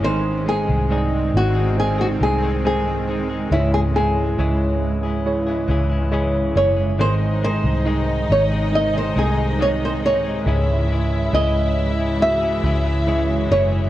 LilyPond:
<<
  \new Staff \with { instrumentName = "Nylon-string guitar" } { \time 4/4 \key cis \minor \tempo 4 = 69 bis'8 gis'4 fis'8 gis'16 fis'16 gis'8 gis'4 | e'16 gis'16 gis'2 r4 cis''8 | bis'8 bis'4 cis''8 dis''16 bis'16 gis'8 cis''16 bis'16 cis''8~ | cis''4 dis''4 e''4. cis''8 | }
  \new Staff \with { instrumentName = "Violin section" } { \time 4/4 \key cis \minor r1 | r1 | <dis' dis''>1 | <e' e''>1 | }
  \new Staff \with { instrumentName = "Tine electric piano" } { \time 4/4 \key cis \minor <gis dis' bis'>4 <gis dis' d'' dis''>4 <gis dis' bis'>4 <gis dis' bis'>4 | <gis dis' e' cis''>4 <gis e' cis''>4 <gis e' cis''>4 <gis e' cis''>4 | <gis dis' bis'>4 <gis dis' dis''>4 <gis dis' bis'>4 <gis dis' dis''>4 | <gis e' cis''>4 <gis e' cis''>4 <gis e' fis'>4 <gis e' cis''>4 | }
  \new Staff \with { instrumentName = "Tine electric piano" } { \clef bass \time 4/4 \key cis \minor <gis, dis>4. r2 r8 | gis,4. r2 r8 | <gis, dis>4. r2 r8 | gis,4. r2 r8 | }
  \new Staff \with { instrumentName = "Clean electric guitar" } { \time 4/4 \key cis \minor <gis, dis gis bis dis' gis'>8 <gis bis dis' gis'>8 <gis, dis gis bis dis' gis'>8. <gis bis dis' gis'>8 <gis bis dis' gis'>16 <gis bis dis' gis'>16 <gis bis dis' gis'>16 <gis, dis gis bis dis' gis'>8 <gis bis dis' gis'>16 <gis bis dis' gis'>16 | <cis e cis' e' gis'>8 <e cis' e' gis'>8 <cis e cis' e' gis'>8. <cis' e' gis'>8 <cis' e' gis'>16 <e cis' e' gis'>16 <cis' e' gis'>16 <cis e cis' e' gis'>8 <e cis' e' gis'>16 <cis' e' gis'>16 | <gis, dis gis bis dis' gis'>8 <gis bis dis' gis'>8 <gis, dis gis bis dis' gis'>8. <gis bis dis' gis'>8 <gis bis dis' gis'>16 <gis bis dis' gis'>16 <gis bis dis' gis'>16 <gis, dis gis bis dis' gis'>8 <gis bis dis' gis'>16 <gis bis dis' gis'>16 | <cis e cis' e' gis'>8 <e cis' e' gis'>8 <cis e cis' e' gis'>8. <cis' e' gis'>8 <cis' e' gis'>16 <e cis' e' gis'>16 <cis' e' gis'>16 <cis e cis' e' gis'>8 <e cis' e' gis'>16 <cis' e' gis'>16 | }
  \new Staff \with { instrumentName = "Ambient pad" } { \clef bass \time 4/4 \key cis \minor <dis gis bis>1 | <cis e>1 | <bis, dis>1 | <cis e>1 | }
  \new Staff \with { instrumentName = "Fingered electric bass" } { \clef bass \time 4/4 \key cis \minor gis,,8. bis,,8. gis,,4 bis,,4. | cis,4 cis,4. cis,4 fis,,8 | gis,,8. bis,,8. gis,,4 bis,,4. | cis,4 cis,4. cis,4 fis,,8 | }
>>